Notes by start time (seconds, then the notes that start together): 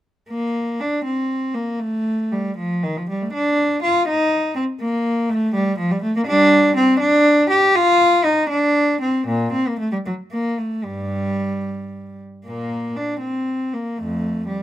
0.29 A#3
0.80 D4
1.05 C4
1.54 A#3
1.80 A3
2.32 G3
2.57 F3
2.83 D#3
2.97 F3
3.09 G3
3.22 A3
3.33 D4
3.83 F4
4.08 D#4
4.56 C4
4.81 A#3
5.29 A3
5.55 G3
5.78 F3
5.91 G3
6.03 A3
6.16 A#3
6.27 G3 D4
6.77 C4
7.00 D4
7.50 G4
7.76 F4
8.24 D#4
8.50 D4
9.01 C4
9.28 A#2
9.53 C4
9.68 A#3
9.79 A3
9.92 G3
10.06 F#3
10.32 A#3
10.58 A3
10.84 G2 G3
12.46 A#2 A#3
12.96 D4
13.20 C4
13.73 A#3
13.98 F2 A3
14.48 G3